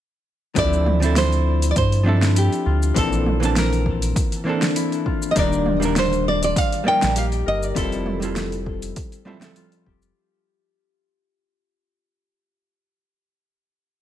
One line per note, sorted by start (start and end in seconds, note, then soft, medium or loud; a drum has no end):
0.55 1.73 D2 medium
0.55 0.98 F3 medium
0.55 0.98 C4 medium
0.55 2.95 C4 medium
0.55 0.98 D4 medium
0.55 0.99 E4 medium
0.55 0.99 A4 medium
0.55 1.17 D5 loud
0.55 kick loud
0.55 open hi-hat medium
0.55 cabasa soft
0.73 cabasa soft
0.86 mid tom medium
1.00 2.02 F3 medium
1.00 2.02 C4 medium
1.00 2.03 D4 medium
1.00 open hi-hat soft
1.00 cabasa medium
1.04 2.04 E4 medium
1.04 2.04 A4 medium
1.16 1.70 C5 medium
1.16 snare medium
1.16 mid tom medium
1.16 open hi-hat medium
1.16 cabasa medium
1.32 open hi-hat soft
1.32 cabasa soft
1.62 open hi-hat soft
1.62 cabasa medium
1.71 1.77 D5 medium
1.76 2.48 G2 medium
1.76 2.39 C5 medium
1.76 kick loud
1.76 open hi-hat medium
1.76 cabasa medium
1.92 open hi-hat soft
1.92 cabasa soft
2.03 2.91 F3 medium
2.03 2.92 C4 medium
2.03 2.93 D4 medium
2.03 4.45 D4 medium
2.03 2.93 E4 medium
2.03 mid tom medium
2.08 2.94 A4 medium
2.22 snare medium
2.22 open hi-hat soft
2.22 cabasa medium
2.36 2.72 E4 medium
2.36 2.99 G4 medium
2.36 open hi-hat medium
2.36 cabasa medium
2.52 open hi-hat soft
2.52 cabasa soft
2.66 2.92 D2 medium
2.66 4.82 F4 medium
2.82 cabasa medium
2.94 4.13 A#1 medium
2.94 3.38 E3 medium
2.94 3.38 A#3 medium
2.94 5.95 C4 medium
2.94 3.38 C4 medium
2.94 3.39 D4 medium
2.94 3.39 A4 medium
2.94 3.58 A4 medium
2.94 kick loud
2.94 open hi-hat medium
2.94 cabasa medium
3.13 cabasa soft
3.26 mid tom medium
3.40 4.42 E3 medium
3.40 4.42 A#3 medium
3.40 4.43 C4 medium
3.40 open hi-hat soft
3.40 cabasa medium
3.44 4.43 D4 medium
3.44 4.44 A5 medium
3.56 4.43 A#4 medium
3.56 snare medium
3.56 mid tom medium
3.56 open hi-hat medium
3.56 cabasa medium
3.73 open hi-hat soft
3.73 cabasa soft
3.86 kick medium
4.02 open hi-hat soft
4.02 cabasa medium
4.16 kick loud
4.16 open hi-hat medium
4.16 cabasa medium
4.32 open hi-hat soft
4.32 cabasa soft
4.44 5.32 E3 medium
4.44 5.32 A#3 medium
4.44 5.33 C4 medium
4.44 5.35 D4 medium
4.44 5.34 D4 medium
4.49 5.34 A4 medium
4.62 snare medium
4.62 open hi-hat soft
4.62 cabasa medium
4.76 5.12 E4 medium
4.76 open hi-hat medium
4.76 cabasa medium
4.92 open hi-hat soft
4.92 cabasa soft
5.06 7.58 F4 medium
5.06 kick medium
5.22 cabasa medium
5.31 5.37 D#5 medium
5.35 6.53 D#1 medium
5.35 5.79 D#3 medium
5.35 5.78 G3 medium
5.35 5.78 A#3 medium
5.35 6.92 D4 medium
5.35 5.79 D4 medium
5.35 5.79 A#4 loud
5.35 5.98 D5 loud
5.35 kick loud
5.35 open hi-hat medium
5.35 cabasa soft
5.53 cabasa soft
5.66 mid tom medium
5.80 6.82 G3 medium
5.80 6.82 A#3 medium
5.80 6.83 D4 medium
5.80 open hi-hat soft
5.80 cabasa medium
5.84 6.83 D#3 medium
5.84 6.84 A#4 medium
5.96 6.25 C5 medium
5.96 snare medium
5.96 mid tom medium
5.96 open hi-hat medium
5.96 cabasa medium
6.13 open hi-hat soft
6.13 cabasa soft
6.28 6.42 D5 medium
6.43 6.58 D5 medium
6.43 open hi-hat soft
6.43 cabasa medium
6.56 6.87 F5 loud
6.56 kick loud
6.56 open hi-hat medium
6.56 cabasa medium
6.72 open hi-hat soft
6.72 cabasa soft
6.84 7.72 G3 medium
6.84 7.72 A#3 medium
6.84 9.33 D#4 medium
6.84 7.73 D#4 medium
6.84 7.73 D5 medium
6.84 mid tom medium
6.88 7.74 A#4 medium
6.88 7.17 G5 loud
7.02 7.43 A#1 medium
7.02 snare medium
7.02 open hi-hat soft
7.02 cabasa medium
7.16 9.51 G4 medium
7.16 7.26 F5 loud
7.16 open hi-hat medium
7.16 cabasa medium
7.32 open hi-hat soft
7.32 cabasa soft
7.46 7.72 G1 medium
7.46 9.58 A#4 medium
7.46 7.64 D#5 loud
7.63 7.77 D5 medium
7.63 cabasa medium
7.75 8.93 F1 medium
7.75 8.18 G3 medium
7.75 8.18 C4 medium
7.75 10.76 C4 medium
7.75 8.18 E4 medium
7.75 8.19 F4 medium
7.75 8.19 A4 loud
7.75 9.53 A4 medium
7.75 kick loud
7.75 open hi-hat medium
7.75 cabasa soft
7.92 open hi-hat soft
7.92 cabasa soft
8.06 mid tom medium
8.20 9.22 G3 medium
8.20 9.22 C4 medium
8.20 9.23 E4 medium
8.20 9.23 F4 medium
8.20 open hi-hat soft
8.20 cabasa medium
8.25 9.24 A4 medium
8.36 snare medium
8.36 mid tom medium
8.36 open hi-hat medium
8.36 cabasa medium
8.52 open hi-hat soft
8.52 cabasa soft
8.66 kick medium
8.82 open hi-hat soft
8.82 cabasa medium
8.96 kick loud
8.96 open hi-hat medium
8.96 cabasa medium
9.12 open hi-hat soft
9.12 cabasa soft
9.25 9.37 G3 medium
9.25 9.37 C4 medium
9.25 9.37 E4 medium
9.25 9.62 E4 medium
9.25 9.38 F4 medium
9.25 9.38 A4 medium
9.25 mid tom medium
9.40 10.12 G3 medium
9.40 10.12 C4 medium
9.40 10.13 E5 medium
9.40 snare medium
9.40 open hi-hat soft
9.40 cabasa medium
9.44 10.14 F3 medium
9.44 10.14 A4 loud
9.56 12.09 F4 medium
9.56 open hi-hat medium
9.56 cabasa medium
9.72 open hi-hat soft
9.72 cabasa soft
9.86 10.12 F1 loud
9.86 12.22 G4 medium
9.86 kick medium
10.02 cabasa medium